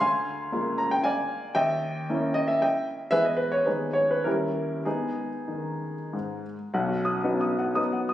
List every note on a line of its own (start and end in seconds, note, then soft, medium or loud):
0.00 0.52 D2 medium
0.00 0.76 F5 medium
0.00 0.76 G#5 medium
0.00 0.79 C6 medium
0.52 1.53 G#3 soft
0.52 1.52 A#3 soft
0.52 1.53 F4 soft
0.78 0.92 A#5 medium
0.91 1.05 G5 medium
1.04 1.53 D5 medium
1.04 1.53 F5 medium
1.04 1.56 G#5 medium
1.55 2.07 D#2 medium
1.55 2.31 D#5 medium
1.55 2.31 E5 medium
1.55 2.35 G5 medium
2.09 3.08 A#3 soft
2.09 3.08 C#4 soft
2.09 3.09 E4 soft
2.34 2.48 D#5 medium
2.48 2.61 E5 medium
2.62 2.86 D#5 medium
2.62 2.86 E5 medium
2.62 2.87 G5 medium
3.11 3.64 E2 medium
3.11 3.62 G#3 soft
3.11 3.63 B3 soft
3.11 3.63 E4 soft
3.11 3.24 G#4 medium
3.11 3.24 B4 medium
3.11 3.24 E5 loud
3.25 3.38 D#5 medium
3.37 3.51 B4 medium
3.52 3.66 C#5 medium
3.65 4.24 D#2 soft
3.65 4.22 G#3 soft
3.65 4.22 B3 soft
3.65 3.94 D#4 soft
3.65 3.94 G#4 soft
3.65 3.95 B4 medium
3.93 4.10 C#5 medium
4.11 4.26 B4 medium
4.24 4.84 D#2 soft
4.24 4.82 G3 soft
4.24 4.82 C#4 soft
4.24 4.82 E4 medium
4.24 4.82 G4 medium
4.24 4.85 A#4 medium
4.85 5.30 G#3 soft
4.85 6.41 B3 soft
4.85 6.41 D#4 soft
4.85 6.44 G#4 medium
5.48 5.94 D#3 soft
6.13 6.55 G#2 soft
6.74 7.24 B1 medium
6.74 7.01 F#5 medium
6.89 7.17 F#4 soft
7.05 7.35 D#6 soft
7.24 7.74 F#3 soft
7.24 7.74 B3 soft
7.24 7.74 D#4 medium
7.24 7.53 F#5 soft
7.41 7.70 D#6 soft
7.58 7.87 F#5 soft
7.75 8.14 F#3 soft
7.75 8.14 B3 soft
7.75 8.14 D#4 soft
7.75 8.04 D#6 medium
7.92 8.14 F#5 soft
8.09 8.14 D#6 medium